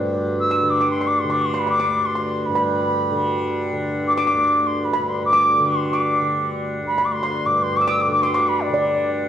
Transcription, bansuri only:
0, 0, Header, 1, 2, 480
1, 0, Start_track
1, 0, Tempo, 500000
1, 8914, End_track
2, 0, Start_track
2, 0, Title_t, "Bansuri"
2, 0, Program_c, 0, 73
2, 378, Note_on_c, 0, 88, 81
2, 667, Note_on_c, 0, 86, 75
2, 682, Note_off_c, 0, 88, 0
2, 859, Note_off_c, 0, 86, 0
2, 865, Note_on_c, 0, 84, 72
2, 1026, Note_on_c, 0, 86, 79
2, 1041, Note_off_c, 0, 84, 0
2, 1148, Note_on_c, 0, 84, 67
2, 1162, Note_off_c, 0, 86, 0
2, 1257, Note_on_c, 0, 86, 80
2, 1271, Note_off_c, 0, 84, 0
2, 1359, Note_on_c, 0, 84, 77
2, 1373, Note_off_c, 0, 86, 0
2, 1487, Note_on_c, 0, 83, 74
2, 1502, Note_off_c, 0, 84, 0
2, 1624, Note_off_c, 0, 83, 0
2, 1631, Note_on_c, 0, 86, 82
2, 1970, Note_on_c, 0, 84, 73
2, 1984, Note_off_c, 0, 86, 0
2, 2356, Note_on_c, 0, 83, 72
2, 2370, Note_off_c, 0, 84, 0
2, 3470, Note_off_c, 0, 83, 0
2, 3909, Note_on_c, 0, 86, 89
2, 3984, Note_off_c, 0, 86, 0
2, 3990, Note_on_c, 0, 86, 90
2, 4478, Note_on_c, 0, 84, 76
2, 4492, Note_off_c, 0, 86, 0
2, 4651, Note_on_c, 0, 83, 67
2, 4666, Note_off_c, 0, 84, 0
2, 4876, Note_on_c, 0, 84, 72
2, 4890, Note_off_c, 0, 83, 0
2, 5035, Note_off_c, 0, 84, 0
2, 5042, Note_on_c, 0, 86, 95
2, 5488, Note_on_c, 0, 84, 77
2, 5503, Note_off_c, 0, 86, 0
2, 5619, Note_on_c, 0, 86, 75
2, 5633, Note_off_c, 0, 84, 0
2, 6207, Note_off_c, 0, 86, 0
2, 6596, Note_on_c, 0, 83, 81
2, 6763, Note_on_c, 0, 86, 58
2, 6777, Note_off_c, 0, 83, 0
2, 6834, Note_on_c, 0, 84, 87
2, 6849, Note_off_c, 0, 86, 0
2, 7159, Note_on_c, 0, 86, 82
2, 7174, Note_off_c, 0, 84, 0
2, 7320, Note_on_c, 0, 84, 89
2, 7334, Note_off_c, 0, 86, 0
2, 7455, Note_on_c, 0, 86, 90
2, 7469, Note_off_c, 0, 84, 0
2, 7578, Note_on_c, 0, 88, 90
2, 7592, Note_off_c, 0, 86, 0
2, 7684, Note_on_c, 0, 86, 82
2, 7699, Note_off_c, 0, 88, 0
2, 7780, Note_off_c, 0, 86, 0
2, 7786, Note_on_c, 0, 86, 94
2, 7892, Note_on_c, 0, 84, 88
2, 7907, Note_off_c, 0, 86, 0
2, 8009, Note_on_c, 0, 86, 82
2, 8024, Note_off_c, 0, 84, 0
2, 8143, Note_on_c, 0, 83, 83
2, 8157, Note_off_c, 0, 86, 0
2, 8277, Note_on_c, 0, 74, 74
2, 8292, Note_off_c, 0, 83, 0
2, 8914, Note_off_c, 0, 74, 0
2, 8914, End_track
0, 0, End_of_file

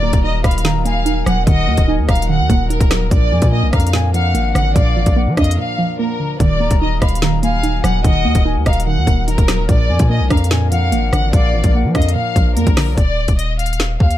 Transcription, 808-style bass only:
0, 0, Header, 1, 2, 480
1, 0, Start_track
1, 0, Key_signature, -6, "minor"
1, 0, Tempo, 410959
1, 1716, Time_signature, 4, 2, 24, 8
1, 16561, End_track
2, 0, Start_track
2, 0, Title_t, "808-style bass"
2, 0, Program_c, 0, 38
2, 36, Note_on_c, 0, 26, 100
2, 150, Note_off_c, 0, 26, 0
2, 156, Note_on_c, 0, 27, 101
2, 502, Note_off_c, 0, 27, 0
2, 516, Note_on_c, 0, 27, 102
2, 1438, Note_off_c, 0, 27, 0
2, 1476, Note_on_c, 0, 27, 105
2, 1706, Note_off_c, 0, 27, 0
2, 1717, Note_on_c, 0, 27, 107
2, 1956, Note_on_c, 0, 39, 104
2, 1973, Note_off_c, 0, 27, 0
2, 2070, Note_off_c, 0, 39, 0
2, 2076, Note_on_c, 0, 26, 107
2, 2317, Note_on_c, 0, 39, 104
2, 2334, Note_off_c, 0, 26, 0
2, 2430, Note_off_c, 0, 39, 0
2, 2436, Note_on_c, 0, 27, 106
2, 2797, Note_on_c, 0, 39, 100
2, 2814, Note_off_c, 0, 27, 0
2, 2910, Note_off_c, 0, 39, 0
2, 2915, Note_on_c, 0, 27, 108
2, 3261, Note_off_c, 0, 27, 0
2, 3276, Note_on_c, 0, 27, 104
2, 3622, Note_off_c, 0, 27, 0
2, 3636, Note_on_c, 0, 34, 109
2, 3875, Note_on_c, 0, 41, 100
2, 3893, Note_off_c, 0, 34, 0
2, 3990, Note_off_c, 0, 41, 0
2, 3995, Note_on_c, 0, 46, 106
2, 4235, Note_on_c, 0, 35, 100
2, 4252, Note_off_c, 0, 46, 0
2, 4350, Note_off_c, 0, 35, 0
2, 4356, Note_on_c, 0, 41, 104
2, 5075, Note_on_c, 0, 32, 102
2, 5093, Note_off_c, 0, 41, 0
2, 5304, Note_off_c, 0, 32, 0
2, 5315, Note_on_c, 0, 32, 109
2, 5546, Note_off_c, 0, 32, 0
2, 5556, Note_on_c, 0, 34, 106
2, 5795, Note_on_c, 0, 32, 101
2, 5812, Note_off_c, 0, 34, 0
2, 5909, Note_off_c, 0, 32, 0
2, 5916, Note_on_c, 0, 34, 101
2, 6155, Note_on_c, 0, 53, 103
2, 6172, Note_off_c, 0, 34, 0
2, 6269, Note_off_c, 0, 53, 0
2, 6276, Note_on_c, 0, 41, 106
2, 6506, Note_off_c, 0, 41, 0
2, 7476, Note_on_c, 0, 27, 112
2, 7715, Note_on_c, 0, 26, 102
2, 7733, Note_off_c, 0, 27, 0
2, 7830, Note_off_c, 0, 26, 0
2, 7836, Note_on_c, 0, 27, 99
2, 8182, Note_off_c, 0, 27, 0
2, 8197, Note_on_c, 0, 27, 106
2, 9118, Note_off_c, 0, 27, 0
2, 9155, Note_on_c, 0, 27, 109
2, 9386, Note_off_c, 0, 27, 0
2, 9396, Note_on_c, 0, 27, 108
2, 9636, Note_on_c, 0, 39, 100
2, 9654, Note_off_c, 0, 27, 0
2, 9750, Note_off_c, 0, 39, 0
2, 9755, Note_on_c, 0, 26, 103
2, 9996, Note_on_c, 0, 39, 97
2, 10014, Note_off_c, 0, 26, 0
2, 10110, Note_off_c, 0, 39, 0
2, 10117, Note_on_c, 0, 27, 106
2, 10476, Note_on_c, 0, 39, 101
2, 10494, Note_off_c, 0, 27, 0
2, 10590, Note_off_c, 0, 39, 0
2, 10596, Note_on_c, 0, 27, 106
2, 10941, Note_off_c, 0, 27, 0
2, 10957, Note_on_c, 0, 27, 106
2, 11302, Note_off_c, 0, 27, 0
2, 11316, Note_on_c, 0, 34, 106
2, 11556, Note_on_c, 0, 41, 102
2, 11573, Note_off_c, 0, 34, 0
2, 11670, Note_off_c, 0, 41, 0
2, 11676, Note_on_c, 0, 46, 108
2, 11915, Note_on_c, 0, 35, 104
2, 11933, Note_off_c, 0, 46, 0
2, 12030, Note_off_c, 0, 35, 0
2, 12036, Note_on_c, 0, 41, 105
2, 12755, Note_on_c, 0, 32, 99
2, 12773, Note_off_c, 0, 41, 0
2, 12984, Note_off_c, 0, 32, 0
2, 12995, Note_on_c, 0, 32, 107
2, 13226, Note_off_c, 0, 32, 0
2, 13236, Note_on_c, 0, 34, 108
2, 13477, Note_on_c, 0, 32, 100
2, 13494, Note_off_c, 0, 34, 0
2, 13590, Note_off_c, 0, 32, 0
2, 13596, Note_on_c, 0, 34, 105
2, 13835, Note_on_c, 0, 53, 99
2, 13853, Note_off_c, 0, 34, 0
2, 13950, Note_off_c, 0, 53, 0
2, 13957, Note_on_c, 0, 41, 103
2, 14187, Note_off_c, 0, 41, 0
2, 14435, Note_on_c, 0, 34, 107
2, 14675, Note_on_c, 0, 41, 99
2, 14692, Note_off_c, 0, 34, 0
2, 14789, Note_off_c, 0, 41, 0
2, 14796, Note_on_c, 0, 34, 110
2, 15036, Note_on_c, 0, 35, 100
2, 15054, Note_off_c, 0, 34, 0
2, 15150, Note_off_c, 0, 35, 0
2, 15155, Note_on_c, 0, 27, 105
2, 15396, Note_on_c, 0, 26, 101
2, 15414, Note_off_c, 0, 27, 0
2, 15510, Note_off_c, 0, 26, 0
2, 15515, Note_on_c, 0, 27, 101
2, 16322, Note_off_c, 0, 27, 0
2, 16356, Note_on_c, 0, 39, 102
2, 16561, Note_off_c, 0, 39, 0
2, 16561, End_track
0, 0, End_of_file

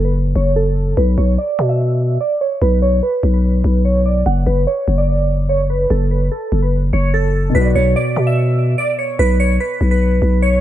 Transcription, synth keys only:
0, 0, Header, 1, 2, 480
1, 0, Start_track
1, 0, Key_signature, 3, "minor"
1, 0, Tempo, 410959
1, 1136, Time_signature, 4, 2, 24, 8
1, 12388, End_track
2, 0, Start_track
2, 0, Title_t, "Synth keys"
2, 0, Program_c, 0, 88
2, 55, Note_on_c, 0, 71, 70
2, 146, Note_off_c, 0, 71, 0
2, 416, Note_on_c, 0, 73, 81
2, 598, Note_off_c, 0, 73, 0
2, 656, Note_on_c, 0, 69, 77
2, 1107, Note_off_c, 0, 69, 0
2, 1136, Note_on_c, 0, 71, 80
2, 1318, Note_off_c, 0, 71, 0
2, 1376, Note_on_c, 0, 73, 77
2, 1558, Note_off_c, 0, 73, 0
2, 1616, Note_on_c, 0, 74, 80
2, 1954, Note_off_c, 0, 74, 0
2, 1976, Note_on_c, 0, 76, 70
2, 2540, Note_off_c, 0, 76, 0
2, 2575, Note_on_c, 0, 74, 83
2, 2758, Note_off_c, 0, 74, 0
2, 2816, Note_on_c, 0, 73, 69
2, 2998, Note_off_c, 0, 73, 0
2, 3056, Note_on_c, 0, 71, 102
2, 3238, Note_off_c, 0, 71, 0
2, 3296, Note_on_c, 0, 73, 99
2, 3478, Note_off_c, 0, 73, 0
2, 3536, Note_on_c, 0, 71, 81
2, 3875, Note_off_c, 0, 71, 0
2, 3896, Note_on_c, 0, 71, 77
2, 4460, Note_off_c, 0, 71, 0
2, 4495, Note_on_c, 0, 73, 79
2, 4678, Note_off_c, 0, 73, 0
2, 4736, Note_on_c, 0, 74, 81
2, 4918, Note_off_c, 0, 74, 0
2, 4976, Note_on_c, 0, 78, 84
2, 5159, Note_off_c, 0, 78, 0
2, 5215, Note_on_c, 0, 71, 83
2, 5398, Note_off_c, 0, 71, 0
2, 5456, Note_on_c, 0, 73, 82
2, 5794, Note_off_c, 0, 73, 0
2, 5816, Note_on_c, 0, 74, 80
2, 6380, Note_off_c, 0, 74, 0
2, 6416, Note_on_c, 0, 73, 92
2, 6598, Note_off_c, 0, 73, 0
2, 6655, Note_on_c, 0, 71, 86
2, 6838, Note_off_c, 0, 71, 0
2, 6896, Note_on_c, 0, 69, 90
2, 7078, Note_off_c, 0, 69, 0
2, 7136, Note_on_c, 0, 71, 79
2, 7318, Note_off_c, 0, 71, 0
2, 7376, Note_on_c, 0, 69, 86
2, 7714, Note_off_c, 0, 69, 0
2, 7736, Note_on_c, 0, 71, 72
2, 7827, Note_off_c, 0, 71, 0
2, 8097, Note_on_c, 0, 73, 84
2, 8279, Note_off_c, 0, 73, 0
2, 8337, Note_on_c, 0, 69, 75
2, 8788, Note_off_c, 0, 69, 0
2, 8816, Note_on_c, 0, 71, 82
2, 8998, Note_off_c, 0, 71, 0
2, 9057, Note_on_c, 0, 73, 80
2, 9239, Note_off_c, 0, 73, 0
2, 9298, Note_on_c, 0, 74, 79
2, 9635, Note_off_c, 0, 74, 0
2, 9657, Note_on_c, 0, 76, 70
2, 10221, Note_off_c, 0, 76, 0
2, 10256, Note_on_c, 0, 74, 85
2, 10438, Note_off_c, 0, 74, 0
2, 10496, Note_on_c, 0, 73, 69
2, 10678, Note_off_c, 0, 73, 0
2, 10737, Note_on_c, 0, 71, 102
2, 10919, Note_off_c, 0, 71, 0
2, 10976, Note_on_c, 0, 73, 99
2, 11158, Note_off_c, 0, 73, 0
2, 11217, Note_on_c, 0, 71, 76
2, 11555, Note_off_c, 0, 71, 0
2, 11577, Note_on_c, 0, 71, 73
2, 12140, Note_off_c, 0, 71, 0
2, 12176, Note_on_c, 0, 73, 78
2, 12358, Note_off_c, 0, 73, 0
2, 12388, End_track
0, 0, End_of_file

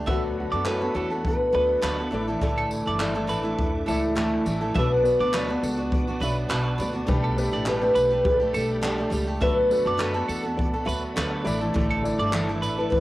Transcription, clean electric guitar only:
0, 0, Header, 1, 2, 480
1, 0, Start_track
1, 0, Key_signature, 2, "major"
1, 0, Tempo, 583658
1, 62, Time_signature, 4, 2, 24, 8
1, 10692, End_track
2, 0, Start_track
2, 0, Title_t, "Clean electric guitar"
2, 0, Program_c, 0, 27
2, 60, Note_on_c, 0, 76, 96
2, 187, Note_off_c, 0, 76, 0
2, 426, Note_on_c, 0, 74, 81
2, 533, Note_off_c, 0, 74, 0
2, 539, Note_on_c, 0, 71, 82
2, 769, Note_off_c, 0, 71, 0
2, 788, Note_on_c, 0, 69, 72
2, 911, Note_off_c, 0, 69, 0
2, 1272, Note_on_c, 0, 71, 72
2, 1394, Note_off_c, 0, 71, 0
2, 1505, Note_on_c, 0, 71, 77
2, 1855, Note_off_c, 0, 71, 0
2, 2120, Note_on_c, 0, 69, 63
2, 2222, Note_off_c, 0, 69, 0
2, 2364, Note_on_c, 0, 74, 74
2, 2464, Note_off_c, 0, 74, 0
2, 2707, Note_on_c, 0, 71, 77
2, 3057, Note_off_c, 0, 71, 0
2, 3192, Note_on_c, 0, 69, 64
2, 3315, Note_off_c, 0, 69, 0
2, 3910, Note_on_c, 0, 76, 94
2, 4035, Note_off_c, 0, 76, 0
2, 4280, Note_on_c, 0, 74, 88
2, 4383, Note_off_c, 0, 74, 0
2, 4393, Note_on_c, 0, 71, 82
2, 4634, Note_off_c, 0, 71, 0
2, 4634, Note_on_c, 0, 69, 80
2, 4757, Note_off_c, 0, 69, 0
2, 5111, Note_on_c, 0, 71, 78
2, 5235, Note_off_c, 0, 71, 0
2, 5343, Note_on_c, 0, 71, 78
2, 5695, Note_off_c, 0, 71, 0
2, 5955, Note_on_c, 0, 69, 65
2, 6060, Note_off_c, 0, 69, 0
2, 6194, Note_on_c, 0, 74, 71
2, 6299, Note_off_c, 0, 74, 0
2, 6542, Note_on_c, 0, 71, 74
2, 6894, Note_off_c, 0, 71, 0
2, 7026, Note_on_c, 0, 69, 71
2, 7152, Note_off_c, 0, 69, 0
2, 7747, Note_on_c, 0, 76, 95
2, 7871, Note_off_c, 0, 76, 0
2, 8120, Note_on_c, 0, 74, 84
2, 8221, Note_off_c, 0, 74, 0
2, 8225, Note_on_c, 0, 71, 80
2, 8453, Note_off_c, 0, 71, 0
2, 8458, Note_on_c, 0, 69, 79
2, 8586, Note_off_c, 0, 69, 0
2, 8944, Note_on_c, 0, 71, 77
2, 9069, Note_off_c, 0, 71, 0
2, 9189, Note_on_c, 0, 71, 81
2, 9535, Note_off_c, 0, 71, 0
2, 9791, Note_on_c, 0, 69, 69
2, 9895, Note_off_c, 0, 69, 0
2, 10029, Note_on_c, 0, 74, 80
2, 10133, Note_off_c, 0, 74, 0
2, 10380, Note_on_c, 0, 71, 73
2, 10692, Note_off_c, 0, 71, 0
2, 10692, End_track
0, 0, End_of_file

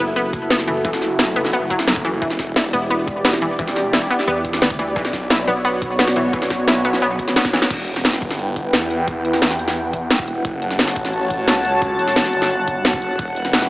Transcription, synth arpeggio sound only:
0, 0, Header, 1, 2, 480
1, 0, Start_track
1, 0, Tempo, 342857
1, 1186, Time_signature, 4, 2, 24, 8
1, 19169, End_track
2, 0, Start_track
2, 0, Title_t, "Synth arpeggio sound"
2, 0, Program_c, 0, 84
2, 226, Note_on_c, 0, 59, 85
2, 278, Note_off_c, 0, 59, 0
2, 706, Note_on_c, 0, 59, 106
2, 758, Note_off_c, 0, 59, 0
2, 945, Note_on_c, 0, 52, 76
2, 1033, Note_off_c, 0, 52, 0
2, 1186, Note_on_c, 0, 52, 84
2, 1273, Note_off_c, 0, 52, 0
2, 1665, Note_on_c, 0, 64, 79
2, 1753, Note_off_c, 0, 64, 0
2, 1905, Note_on_c, 0, 59, 78
2, 1993, Note_off_c, 0, 59, 0
2, 2145, Note_on_c, 0, 59, 84
2, 2198, Note_off_c, 0, 59, 0
2, 2385, Note_on_c, 0, 54, 104
2, 2473, Note_off_c, 0, 54, 0
2, 2625, Note_on_c, 0, 54, 78
2, 2678, Note_off_c, 0, 54, 0
2, 2865, Note_on_c, 0, 52, 102
2, 2953, Note_off_c, 0, 52, 0
2, 3105, Note_on_c, 0, 52, 83
2, 3193, Note_off_c, 0, 52, 0
2, 3584, Note_on_c, 0, 64, 76
2, 3672, Note_off_c, 0, 64, 0
2, 3825, Note_on_c, 0, 59, 82
2, 3913, Note_off_c, 0, 59, 0
2, 4066, Note_on_c, 0, 59, 84
2, 4118, Note_off_c, 0, 59, 0
2, 4546, Note_on_c, 0, 59, 104
2, 4598, Note_off_c, 0, 59, 0
2, 4785, Note_on_c, 0, 52, 74
2, 4873, Note_off_c, 0, 52, 0
2, 5026, Note_on_c, 0, 52, 81
2, 5113, Note_off_c, 0, 52, 0
2, 5506, Note_on_c, 0, 64, 80
2, 5593, Note_off_c, 0, 64, 0
2, 5746, Note_on_c, 0, 59, 81
2, 5833, Note_off_c, 0, 59, 0
2, 5986, Note_on_c, 0, 59, 87
2, 6038, Note_off_c, 0, 59, 0
2, 6466, Note_on_c, 0, 59, 100
2, 6518, Note_off_c, 0, 59, 0
2, 6706, Note_on_c, 0, 52, 76
2, 6793, Note_off_c, 0, 52, 0
2, 6946, Note_on_c, 0, 52, 83
2, 7033, Note_off_c, 0, 52, 0
2, 7426, Note_on_c, 0, 64, 78
2, 7513, Note_off_c, 0, 64, 0
2, 7666, Note_on_c, 0, 59, 77
2, 7753, Note_off_c, 0, 59, 0
2, 7906, Note_on_c, 0, 59, 86
2, 7958, Note_off_c, 0, 59, 0
2, 8386, Note_on_c, 0, 59, 102
2, 8438, Note_off_c, 0, 59, 0
2, 8626, Note_on_c, 0, 52, 76
2, 8713, Note_off_c, 0, 52, 0
2, 8866, Note_on_c, 0, 52, 84
2, 8953, Note_off_c, 0, 52, 0
2, 9346, Note_on_c, 0, 64, 79
2, 9433, Note_off_c, 0, 64, 0
2, 9587, Note_on_c, 0, 59, 79
2, 9673, Note_off_c, 0, 59, 0
2, 9827, Note_on_c, 0, 59, 88
2, 9879, Note_off_c, 0, 59, 0
2, 10306, Note_on_c, 0, 59, 100
2, 10358, Note_off_c, 0, 59, 0
2, 10547, Note_on_c, 0, 52, 75
2, 10633, Note_off_c, 0, 52, 0
2, 19169, End_track
0, 0, End_of_file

